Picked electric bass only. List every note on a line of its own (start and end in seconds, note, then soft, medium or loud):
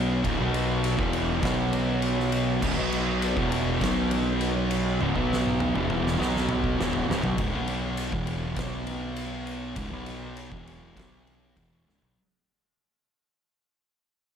0.00 0.20 B1 loud
0.24 0.38 C#1 loud
0.39 0.95 B1 loud
0.99 1.40 E1 loud
1.43 2.58 B1 loud
2.62 2.76 C#1 loud
2.78 3.33 B1 loud
3.37 3.78 E1 loud
3.81 4.97 B1 loud
5.00 5.14 C#1 loud
5.15 5.71 B1 loud
5.75 6.17 E1 loud
6.19 6.75 B1 loud
6.79 7.07 E1 loud
7.08 7.22 C#1 medium
7.23 7.37 B1 loud
7.38 7.52 C#1 medium
7.53 8.09 B1 medium
8.12 8.54 E1 medium
8.56 9.73 B1 medium
9.76 9.91 C#1 medium
9.92 10.48 B1 medium
10.52 10.94 E1 loud
10.96 11.53 B1 medium
11.56 11.84 E1 medium
11.87 12.01 C#1 medium
12.02 12.16 B1 medium